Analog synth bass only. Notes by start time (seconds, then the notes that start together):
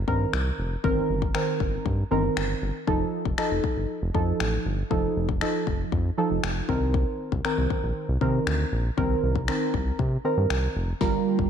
0.08 G2
0.33 C2
0.58 F1
0.84 G1
1.09 G1
1.60 G1
1.86 G2
2.11 G1
2.37 G1
2.62 G1
2.88 F1
3.25 F1
3.51 F1
3.76 G1
4.02 F1
4.15 F2
4.40 A1
4.65 G1
4.91 F1
5.16 F1
5.67 F1
5.92 F2
6.31 F1
6.43 F1
6.69 C2
7.32 C2
7.58 C2
7.83 A#1
8.09 C2
8.21 C3
8.47 D2
8.72 A#1
8.98 C2
9.23 C2
9.74 C2
9.99 C3
10.37 G2
10.50 C2
10.75 F1
11.01 G1
11.39 G1